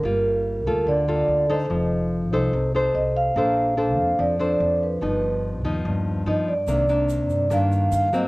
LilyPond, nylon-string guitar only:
\new Staff \with { instrumentName = "Nylon-string guitar" } { \time 4/4 \key g \minor \tempo 4 = 145 << { <bes f'>4. <bes f' a'>4 <bes f' a'>4 <ees' a' c''>8~ | <ees' a' c''>4. <ees' a' c''>4 <ees' a' c''>4. | <d' a' c''>4 <d' a' c''>4. <d' a' c''>4. | <f b dis'>4. <f b dis'>4. <f b dis'>8 r8 |
<ees bes d'>8 <ees bes d'>4. <ees bes d'>4. <fis bes c'>8 | } \\ { g2 d2 | f2 c2 | bes2 f2 | g,2 g,2 |
c2 g,2 | } >> }